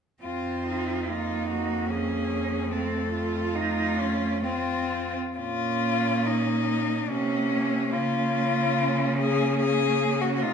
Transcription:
0.23 F2 C4 F4
0.67 D#4
1.08 A#3 D#4 F4
1.50 F#4
1.90 C#4 G#4
2.70 A3 C4 A4
3.12 F4
3.54 A3 D#4 F4
3.99 C#4
4.43 C4 F4
5.37 A#2 A#3 C#4 F4
6.26 D#4
7.09 C3 A#3 C#4
7.92 C#3 A#3 C#4 F4
9.19 G#4
9.60 G#4
10.21 F#4
10.35 F#4
10.41 C3 A3 D#4 F4

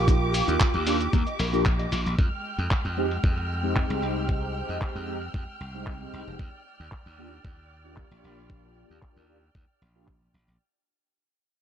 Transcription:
Already playing: A#1 A#3 F4 G4 D6
0.07 D#4, kick, closed hi-hat, shaker
0.34 open hi-hat, shaker
0.48 D#2 D#4, closed hi-hat, shaker
0.60 kick, clap, closed hi-hat, shaker
0.74 D#2, closed hi-hat
0.86 A#3 D4 F4 G4, open hi-hat, shaker
1.00 closed hi-hat, shaker
1.13 D#2 A#3, kick, closed hi-hat, shaker
1.27 D#5, closed hi-hat, shaker
1.39 A#1 A#4, open hi-hat, shaker
1.53 A#3 D4 F4 G4 A#4, shaker
1.66 G4, kick, clap, closed hi-hat, shaker
1.79 D#5, closed hi-hat
1.92 A#1 F4, open hi-hat, shaker
2.06 A#1, shaker
2.19 F2 G#3 G5 F6, kick, closed hi-hat
2.58 F2, closed hi-hat
2.71 kick, clap, closed hi-hat
2.85 F2, closed hi-hat
2.97 G#3 C4 D#4 G4
3.11 closed hi-hat
3.24 F2, kick, closed hi-hat
3.38 closed hi-hat
3.63 G#3 C4 D#4 G4
3.76 kick, clap, closed hi-hat
3.89 C2 G#3 C4 D#4 G4, closed hi-hat
4.02 C2
4.29 kick, closed hi-hat
4.69 F2, closed hi-hat
4.82 kick, clap, closed hi-hat
4.95 F2, closed hi-hat
5.07 G#3 C4 D#4 G4
5.22 closed hi-hat
5.34 F2, kick, closed hi-hat
5.48 closed hi-hat
5.61 C2
5.74 G#3 C4 D#4 G4
5.87 kick, clap, closed hi-hat
6.00 G#3 C4 D#4 G4, closed hi-hat
6.13 C2
6.27 F1
6.39 D#2 D5, kick, closed hi-hat
6.80 D#2, closed hi-hat
6.92 kick, clap, closed hi-hat
7.06 D#2, closed hi-hat
7.18 A#3 D4 F4 G4
7.32 closed hi-hat
7.44 D#2, kick, closed hi-hat
7.58 closed hi-hat
7.84 A#3 D4 F4 G4
7.97 kick, clap, closed hi-hat
8.10 A#1 A#3 D4 F4 G4, closed hi-hat
8.24 A#1
8.49 kick, closed hi-hat
8.63 closed hi-hat
8.90 D#2
9.02 kick, clap
9.16 D#2
9.28 A#3 D4 F4 G4
9.42 closed hi-hat
9.55 D#2, kick, closed hi-hat
9.82 A#1
9.95 A#3 D4 F4 G4
10.07 kick, clap
10.21 closed hi-hat
10.34 A#1
10.48 A#1

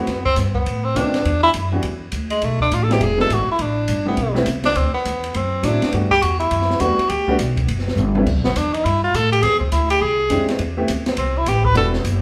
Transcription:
Already playing: B3
0.07 F#2, kick, snare, ride
0.25 C4, kick
0.36 G2, kick, snare, hi-hat pedal, ride
0.55 B3, kick
0.66 A2, kick, ride
0.84 C4
0.95 D2 D#3 A3 B3 C4 D4 F4, kick, hi-hat pedal, ride
1.14 snare, ride
1.25 E2, kick, ride
1.43 E4
1.54 F#2, kick, hi-hat pedal, ride
1.72 E3 G3 B3 D4 F#4
1.83 E2, kick, ride
2.12 D2, kick, hi-hat pedal, ride
2.30 G#3, ride
2.42 B1 A3, kick, ride
2.60 D4, kick
2.72 A1 F4, hi-hat pedal, ride
2.83 A4
2.89 F#3 G#3 B3 D4 E4 G4, snare, ride
3.01 E1 G#4, kick, ride
3.17 F#3 G#3 B3 D4 E4 A4, snare
3.30 G#1 F#4, kick, hi-hat pedal, ride
3.49 E4, muted upright bass stroke
3.59 A1 D4, kick, ride
3.88 G1, kick, hi-hat pedal, ride
4.06 G3 A3 B3 C4 E4
4.17 B1, kick, ride
4.34 G3 A3 B3 C4 E4, snare
4.46 C2, kick, hi-hat pedal, ride
4.64 D4, snare, ride
4.75 D2 C4, kick, ride
4.94 B3, muted upright bass stroke
5.05 E2, kick, hi-hat pedal, ride
5.24 ride
5.34 F#2 C4, kick, ride
5.63 A2 F#3 A3 C4 D4 E4, kick, hi-hat pedal, ride
5.82 muted upright bass stroke, snare, ride
5.92 G2 G3 A3 B3 D4 F#4, kick, ride
6.11 G4, kick
6.22 E2 F#4, kick, hi-hat pedal, ride
6.40 E4, ride
6.51 F#2, kick, ride
6.61 snare
6.70 snare
6.79 E2 G3 A3 B3 D4 F#4, kick, hi-hat pedal, ride
6.98 muted upright bass stroke, ride
7.09 D2 G4, kick, ride
7.28 G3 A3 B3 D4 F#4, kick
7.39 B1, hi-hat pedal, ride
7.57 kick, ride
7.68 F#1, kick, ride
7.79 snare
7.88 snare
7.96 G1, hi-hat pedal, high tom
8.15 G3 B3 C4 D4 E4, high tom
8.26 C2, kick, crash
8.36 B1
8.44 G1 B3, snare
8.56 E2 D4, kick, hi-hat pedal, ride
8.74 D#4, ride
8.85 G2 E4, kick, ride
9.04 F4
9.14 A2 A4, kick, hi-hat pedal, ride
9.32 G4, ride
9.42 E2 G#4, kick, snare, ride
9.60 C4, kick
9.72 D2 E4, hi-hat pedal, ride
9.90 G4, ride
10.01 C2 G#4, kick
10.30 F2 G#3 C4 D4 E4 G4, kick, hi-hat pedal, ride
10.48 snare, ride
10.59 E2, kick, ride
10.77 A3 B3 C4 E4 G4
10.88 D2, kick, hi-hat pedal, ride
11.06 snare, ride
11.17 C2 C4, kick, ride
11.38 E4
11.46 A1 G4, kick, snare, hi-hat pedal, ride
11.65 B4, kick
11.74 E1 G3 B3 D4 E4 F#4 A4, kick, ride
11.93 snare
12.04 F#1, kick, hi-hat pedal, ride

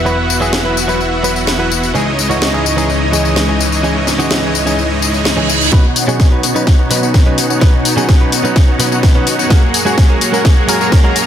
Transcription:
Already playing: E1 E3 B3 E4 F#4 B4 E5 F#5
0.05 F#3 B3 E4 B4, tambourine
0.30 tambourine
0.40 F#3 B3 E4 G#4, tambourine
0.53 snare, tambourine
0.64 F#3 B3 E4 B4
0.77 tambourine
0.87 F#3 B3 E4 B4, tambourine
1.01 tambourine
1.23 F#3 B3 E4 B4, tambourine
1.36 tambourine
1.47 snare, tambourine
1.58 F#3 B3 E4 B4
1.72 tambourine
1.83 tambourine
1.94 C#2 C#3 E3 G#3 C#4 D#4 E4 G#4 C#5 D#5, tambourine
2.19 tambourine
2.29 E3 C#4 D#4 F#4, tambourine
2.42 snare, tambourine
2.53 E3 C#4 D#4 G#4
2.66 tambourine
2.76 E3 C#4 D#4 G#4, tambourine
2.90 tambourine
3.12 E3 C#4 G#4 D#5, tambourine
3.25 tambourine
3.36 snare, tambourine
3.47 E3 C#4 D#4 G#4
3.60 tambourine
3.72 tambourine
3.83 E3 C#4 D#4 G#4, tambourine
4.07 snare, tambourine
4.18 E3 C#4 D#4 F#4, tambourine
4.31 snare, tambourine
4.42 E3 C#4 D#4 G#4
4.55 tambourine
4.66 E3 C#4 D#4 G#4, tambourine
4.78 tambourine, reverse cymbal
5.02 tambourine
5.14 tambourine
5.25 snare, tambourine
5.37 E3 C#4 D#4 G#4
5.49 tambourine
5.61 tambourine
5.72 B2 F#3 B3 C#4 D#4 F#4 B4 C#5 F#5, kick, snare, riser
5.96 open hi-hat, tambourine
6.07 B2 F#3 B3 C#4 D#4 F#4 G#4 C#5 F#5, tambourine
6.20 kick, snare, tambourine
6.31 B2 F#3 C#4 D#4 B4
6.43 B3 D#4 F#4 C#5 F#5, open hi-hat, tambourine
6.55 B2 F#3 C#4 D#4 B4, tambourine
6.67 kick, snare, tambourine
6.79 B3 D#4 F#4 C#5 F#5
6.90 B2 F#3 B3 C#4 D#4 F#4 B4 C#5 F#5, open hi-hat, tambourine
7.02 B3 D#4 F#4 C#5 F#5, tambourine
7.14 kick, snare, tambourine
7.25 B2 F#3 B3 C#4 D#4 F#4 B4 C#5 F#5
7.38 open hi-hat, tambourine
7.50 B3 D#4 F#4 C#5 F#5, tambourine
7.61 B2 F#3 B3 C#4 D#4 F#4 B4 F#5, kick, snare, tambourine
7.85 open hi-hat, tambourine
7.96 B2 F#3 B3 C#4 D#4 F#4 G#4 C#5 F#5, tambourine
8.09 kick, snare, tambourine
8.20 B2 F#3 C#4 D#4 B4
8.32 B3 D#4 F#4 C#5 F#5, open hi-hat, tambourine
8.43 B2 F#3 C#4 D#4 B4, tambourine
8.56 kick, snare, tambourine
8.68 B3 D#4 F#4 C#5 F#5
8.79 B2 F#3 B3 C#4 D#4 F#4 B4 C#5 F#5, open hi-hat, tambourine
8.91 B3 D#4 F#4 C#5 F#5, tambourine
9.03 kick, snare, tambourine
9.14 B2 F#3 B3 C#4 D#4 F#4 B4 C#5 F#5
9.27 open hi-hat, tambourine
9.38 B3 D#4 F#4 C#5 F#5, tambourine
9.50 F#2 G#3 C#4 F#4 G#4 A#4, kick, snare, tambourine
9.74 open hi-hat, tambourine
9.85 G#3 A#3 C#4 F#4 G#4 C#5 F#5, tambourine
9.98 kick, snare, tambourine
10.09 G#3 C#4 F#4 A#4
10.21 A#3 F#4 G#4 C#5 F#5, open hi-hat, tambourine
10.32 G#3 C#4 F#4 A#4, tambourine
10.45 kick, snare, tambourine
10.57 A#3 F#4 G#4 C#5 F#5
10.68 G#3 A#3 C#4 F#4 G#4 A#4 C#5 A#5, open hi-hat, tambourine
10.80 A#3 F#4 G#4 C#5 A#5, tambourine
10.92 kick, snare, tambourine
11.03 G#3 A#3 C#4 F#4 G#4 A#4 C#5 A#5
11.16 open hi-hat, tambourine

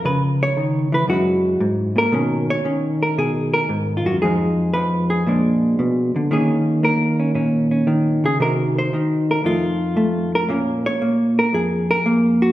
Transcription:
Already playing: G#3
0.05 C#3 B4
0.43 C#5
0.57 D#3
0.92 E3 B4
1.08 F#2 F#3 G#3 E4 F#4
1.60 G#2
1.96 A#2 A#4
2.12 B2 D#3 C#4
2.50 C#5
2.64 D#3 C#4
3.03 A#4
3.18 B2 G#4
3.54 A#4
3.69 G#2
3.97 F4
4.06 F#2 F#4
4.22 F2 F3 G#3 D#4 G#4
4.74 F3 B4
5.10 G#4
5.27 A#2 F3 G#3 D4
5.79 B2
6.16 D3
6.31 D#3 A#3 C#4 G#4
6.83 A#3 A#4
7.20 C#4
7.35 A#2 C#4
7.71 C#4
7.87 D#3
8.24 C#3 G#4
8.40 C3 D#3 D#4 F#4 A#4
8.78 C5
8.93 D#3 D#4
9.31 A#4
9.44 F2 A3 D#4 F4
9.97 A3
10.35 A#4
10.49 A#2 A#3 C#4
10.86 C#5
11.02 A#3
11.39 A#4
11.53 F2 G#4
11.91 A#4
12.06 A#3
12.42 F#4

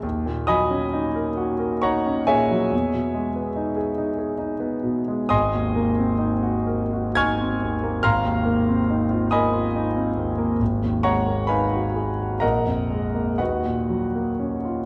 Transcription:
0.03 D#2
0.26 A#2
0.47 F#3 D#5 G#5 B5 D#6
0.70 C#4
0.93 D#4
1.15 A#4
1.37 F#4
1.59 A#4
1.82 D#4 C#5 F#5 A#5 C#6
2.07 C#4
2.27 A#2 G#4 C#5 E5 G#5
2.51 F#3
2.72 E2
2.93 B2
3.14 G#3
3.36 B3
3.56 D#4
3.76 G#4
3.98 D#4
4.18 G#4
4.38 D#4
4.60 B3
4.83 B2
5.08 G#3
5.29 G#1 D#5 G#5 C6 D#6
5.55 D#2
5.76 A#3
5.98 C4
6.19 D#4
6.43 F#4
6.67 A#4
6.93 F#4
7.15 D#4 G#5 C#6 F6 G#6
7.41 C4
7.62 D#2
7.84 A#3
8.03 G#1 F5 A#5 C6 F6
8.25 D#2
8.45 A#3
8.68 C4
8.90 D#4
9.11 F4
9.31 A#4 D#5 G#5 B5 D#6
9.54 F4
9.76 D#4
9.96 C4
10.17 D#2
10.38 A#3
10.60 G#1
10.83 D#2
11.03 G#3 C#5 F#5 A#5 C#6
11.27 A#3
11.47 D#4 B4 F5 G#5 B5
11.73 F#4
11.96 G#4
12.20 F#4
12.40 A#1 A#4 D#5 F#5 A#5
12.66 F2
12.90 G#3
13.15 A#3
13.38 D#2 F#4 B4 D#5 F#5
13.65 A#2
13.90 F#3
14.15 A#3
14.40 C#4
14.65 F4

